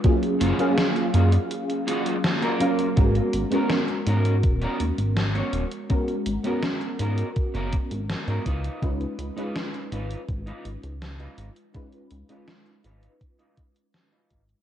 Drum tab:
HH |xxxxxxxxxxxxxxxx|xxxxxxxxxxxxxxxx|xxxxxxxxxxxxxxxx|xxxxxxxxxxxxxxxx|
SD |----o-------o---|----o-------o---|----o-------o---|----o-------o---|
BD |o---------------|o-------o-------|o-------o-o---o-|o-------o-------|

HH |xxxxxxxxxxxxxxxx|
SD |----o-------o---|
BD |o-------o-o---o-|